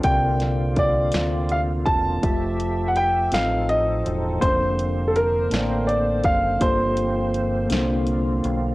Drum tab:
HH |xxxxxx|xxxxxx|xxxxxx|xxxxxx|
SD |-o-o--|---o--|---o--|---o--|
BD |o-o--o|o-----|o----o|o-----|